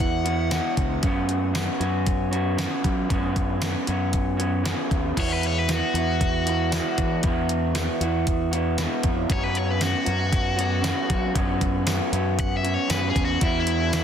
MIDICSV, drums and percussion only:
0, 0, Header, 1, 2, 480
1, 0, Start_track
1, 0, Tempo, 515907
1, 959, Time_signature, 4, 2, 24, 8
1, 13061, End_track
2, 0, Start_track
2, 0, Title_t, "Drums"
2, 0, Note_on_c, 9, 36, 82
2, 0, Note_on_c, 9, 42, 81
2, 90, Note_off_c, 9, 36, 0
2, 90, Note_off_c, 9, 42, 0
2, 239, Note_on_c, 9, 42, 62
2, 332, Note_off_c, 9, 42, 0
2, 476, Note_on_c, 9, 42, 75
2, 476, Note_on_c, 9, 54, 95
2, 478, Note_on_c, 9, 38, 100
2, 569, Note_off_c, 9, 42, 0
2, 569, Note_off_c, 9, 54, 0
2, 571, Note_off_c, 9, 38, 0
2, 719, Note_on_c, 9, 36, 78
2, 719, Note_on_c, 9, 42, 57
2, 812, Note_off_c, 9, 36, 0
2, 812, Note_off_c, 9, 42, 0
2, 957, Note_on_c, 9, 42, 76
2, 959, Note_on_c, 9, 36, 101
2, 1050, Note_off_c, 9, 42, 0
2, 1052, Note_off_c, 9, 36, 0
2, 1198, Note_on_c, 9, 42, 56
2, 1291, Note_off_c, 9, 42, 0
2, 1441, Note_on_c, 9, 42, 75
2, 1441, Note_on_c, 9, 54, 101
2, 1443, Note_on_c, 9, 38, 101
2, 1534, Note_off_c, 9, 42, 0
2, 1534, Note_off_c, 9, 54, 0
2, 1536, Note_off_c, 9, 38, 0
2, 1683, Note_on_c, 9, 42, 55
2, 1776, Note_off_c, 9, 42, 0
2, 1921, Note_on_c, 9, 42, 73
2, 1923, Note_on_c, 9, 36, 80
2, 2014, Note_off_c, 9, 42, 0
2, 2016, Note_off_c, 9, 36, 0
2, 2165, Note_on_c, 9, 42, 51
2, 2258, Note_off_c, 9, 42, 0
2, 2405, Note_on_c, 9, 42, 78
2, 2405, Note_on_c, 9, 54, 97
2, 2407, Note_on_c, 9, 38, 99
2, 2498, Note_off_c, 9, 42, 0
2, 2498, Note_off_c, 9, 54, 0
2, 2500, Note_off_c, 9, 38, 0
2, 2646, Note_on_c, 9, 36, 81
2, 2647, Note_on_c, 9, 42, 63
2, 2739, Note_off_c, 9, 36, 0
2, 2740, Note_off_c, 9, 42, 0
2, 2887, Note_on_c, 9, 36, 111
2, 2888, Note_on_c, 9, 42, 78
2, 2980, Note_off_c, 9, 36, 0
2, 2981, Note_off_c, 9, 42, 0
2, 3126, Note_on_c, 9, 36, 72
2, 3127, Note_on_c, 9, 42, 57
2, 3219, Note_off_c, 9, 36, 0
2, 3220, Note_off_c, 9, 42, 0
2, 3365, Note_on_c, 9, 42, 80
2, 3365, Note_on_c, 9, 54, 104
2, 3367, Note_on_c, 9, 38, 103
2, 3458, Note_off_c, 9, 42, 0
2, 3458, Note_off_c, 9, 54, 0
2, 3460, Note_off_c, 9, 38, 0
2, 3604, Note_on_c, 9, 42, 62
2, 3697, Note_off_c, 9, 42, 0
2, 3843, Note_on_c, 9, 42, 86
2, 3847, Note_on_c, 9, 36, 79
2, 3936, Note_off_c, 9, 42, 0
2, 3940, Note_off_c, 9, 36, 0
2, 4091, Note_on_c, 9, 42, 62
2, 4184, Note_off_c, 9, 42, 0
2, 4331, Note_on_c, 9, 42, 77
2, 4331, Note_on_c, 9, 54, 97
2, 4333, Note_on_c, 9, 38, 103
2, 4424, Note_off_c, 9, 42, 0
2, 4424, Note_off_c, 9, 54, 0
2, 4426, Note_off_c, 9, 38, 0
2, 4570, Note_on_c, 9, 36, 77
2, 4574, Note_on_c, 9, 42, 56
2, 4663, Note_off_c, 9, 36, 0
2, 4668, Note_off_c, 9, 42, 0
2, 4811, Note_on_c, 9, 36, 112
2, 4814, Note_on_c, 9, 42, 82
2, 4814, Note_on_c, 9, 49, 107
2, 4904, Note_off_c, 9, 36, 0
2, 4907, Note_off_c, 9, 42, 0
2, 4907, Note_off_c, 9, 49, 0
2, 5055, Note_on_c, 9, 42, 66
2, 5148, Note_off_c, 9, 42, 0
2, 5292, Note_on_c, 9, 42, 81
2, 5292, Note_on_c, 9, 54, 105
2, 5294, Note_on_c, 9, 38, 102
2, 5385, Note_off_c, 9, 42, 0
2, 5385, Note_off_c, 9, 54, 0
2, 5387, Note_off_c, 9, 38, 0
2, 5537, Note_on_c, 9, 42, 65
2, 5630, Note_off_c, 9, 42, 0
2, 5776, Note_on_c, 9, 36, 82
2, 5778, Note_on_c, 9, 42, 87
2, 5869, Note_off_c, 9, 36, 0
2, 5871, Note_off_c, 9, 42, 0
2, 6018, Note_on_c, 9, 42, 66
2, 6111, Note_off_c, 9, 42, 0
2, 6255, Note_on_c, 9, 42, 85
2, 6255, Note_on_c, 9, 54, 101
2, 6257, Note_on_c, 9, 38, 104
2, 6348, Note_off_c, 9, 42, 0
2, 6348, Note_off_c, 9, 54, 0
2, 6350, Note_off_c, 9, 38, 0
2, 6493, Note_on_c, 9, 42, 71
2, 6495, Note_on_c, 9, 36, 89
2, 6586, Note_off_c, 9, 42, 0
2, 6588, Note_off_c, 9, 36, 0
2, 6727, Note_on_c, 9, 42, 91
2, 6734, Note_on_c, 9, 36, 108
2, 6820, Note_off_c, 9, 42, 0
2, 6827, Note_off_c, 9, 36, 0
2, 6971, Note_on_c, 9, 42, 67
2, 7064, Note_off_c, 9, 42, 0
2, 7210, Note_on_c, 9, 42, 97
2, 7210, Note_on_c, 9, 54, 102
2, 7212, Note_on_c, 9, 38, 102
2, 7303, Note_off_c, 9, 42, 0
2, 7303, Note_off_c, 9, 54, 0
2, 7305, Note_off_c, 9, 38, 0
2, 7454, Note_on_c, 9, 42, 72
2, 7547, Note_off_c, 9, 42, 0
2, 7693, Note_on_c, 9, 42, 89
2, 7695, Note_on_c, 9, 36, 81
2, 7786, Note_off_c, 9, 42, 0
2, 7788, Note_off_c, 9, 36, 0
2, 7935, Note_on_c, 9, 42, 66
2, 8028, Note_off_c, 9, 42, 0
2, 8169, Note_on_c, 9, 42, 94
2, 8169, Note_on_c, 9, 54, 95
2, 8171, Note_on_c, 9, 38, 101
2, 8262, Note_off_c, 9, 42, 0
2, 8262, Note_off_c, 9, 54, 0
2, 8264, Note_off_c, 9, 38, 0
2, 8405, Note_on_c, 9, 42, 68
2, 8410, Note_on_c, 9, 36, 77
2, 8498, Note_off_c, 9, 42, 0
2, 8503, Note_off_c, 9, 36, 0
2, 8649, Note_on_c, 9, 36, 112
2, 8650, Note_on_c, 9, 42, 89
2, 8742, Note_off_c, 9, 36, 0
2, 8743, Note_off_c, 9, 42, 0
2, 8887, Note_on_c, 9, 42, 63
2, 8980, Note_off_c, 9, 42, 0
2, 9126, Note_on_c, 9, 42, 90
2, 9126, Note_on_c, 9, 54, 108
2, 9128, Note_on_c, 9, 38, 103
2, 9219, Note_off_c, 9, 42, 0
2, 9219, Note_off_c, 9, 54, 0
2, 9221, Note_off_c, 9, 38, 0
2, 9364, Note_on_c, 9, 42, 70
2, 9457, Note_off_c, 9, 42, 0
2, 9607, Note_on_c, 9, 36, 83
2, 9608, Note_on_c, 9, 42, 81
2, 9700, Note_off_c, 9, 36, 0
2, 9701, Note_off_c, 9, 42, 0
2, 9850, Note_on_c, 9, 42, 65
2, 9943, Note_off_c, 9, 42, 0
2, 10085, Note_on_c, 9, 42, 91
2, 10085, Note_on_c, 9, 54, 113
2, 10087, Note_on_c, 9, 38, 99
2, 10178, Note_off_c, 9, 42, 0
2, 10178, Note_off_c, 9, 54, 0
2, 10180, Note_off_c, 9, 38, 0
2, 10326, Note_on_c, 9, 42, 70
2, 10327, Note_on_c, 9, 36, 86
2, 10419, Note_off_c, 9, 42, 0
2, 10420, Note_off_c, 9, 36, 0
2, 10565, Note_on_c, 9, 36, 114
2, 10566, Note_on_c, 9, 42, 96
2, 10658, Note_off_c, 9, 36, 0
2, 10659, Note_off_c, 9, 42, 0
2, 10804, Note_on_c, 9, 42, 66
2, 10805, Note_on_c, 9, 36, 72
2, 10897, Note_off_c, 9, 42, 0
2, 10898, Note_off_c, 9, 36, 0
2, 11041, Note_on_c, 9, 42, 90
2, 11041, Note_on_c, 9, 54, 105
2, 11043, Note_on_c, 9, 38, 103
2, 11134, Note_off_c, 9, 42, 0
2, 11134, Note_off_c, 9, 54, 0
2, 11136, Note_off_c, 9, 38, 0
2, 11286, Note_on_c, 9, 42, 70
2, 11379, Note_off_c, 9, 42, 0
2, 11524, Note_on_c, 9, 42, 101
2, 11525, Note_on_c, 9, 36, 88
2, 11617, Note_off_c, 9, 42, 0
2, 11618, Note_off_c, 9, 36, 0
2, 11765, Note_on_c, 9, 42, 68
2, 11859, Note_off_c, 9, 42, 0
2, 12001, Note_on_c, 9, 42, 86
2, 12001, Note_on_c, 9, 54, 98
2, 12002, Note_on_c, 9, 38, 104
2, 12094, Note_off_c, 9, 42, 0
2, 12094, Note_off_c, 9, 54, 0
2, 12095, Note_off_c, 9, 38, 0
2, 12242, Note_on_c, 9, 36, 85
2, 12245, Note_on_c, 9, 42, 70
2, 12335, Note_off_c, 9, 36, 0
2, 12338, Note_off_c, 9, 42, 0
2, 12479, Note_on_c, 9, 42, 92
2, 12482, Note_on_c, 9, 36, 106
2, 12572, Note_off_c, 9, 42, 0
2, 12575, Note_off_c, 9, 36, 0
2, 12717, Note_on_c, 9, 42, 69
2, 12810, Note_off_c, 9, 42, 0
2, 12960, Note_on_c, 9, 42, 94
2, 12960, Note_on_c, 9, 54, 111
2, 12962, Note_on_c, 9, 38, 107
2, 13053, Note_off_c, 9, 42, 0
2, 13053, Note_off_c, 9, 54, 0
2, 13055, Note_off_c, 9, 38, 0
2, 13061, End_track
0, 0, End_of_file